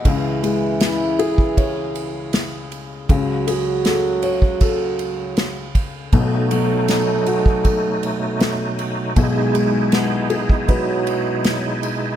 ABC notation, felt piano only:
X:1
M:4/4
L:1/8
Q:1/4=79
K:C#m
V:1 name="Felt piano"
[C,,C,] G, E G c4 | [C,,C,] G A c A4 | [B,,,B,,] F, D F A4 | [B,,,B,,] G, B, G B4 |]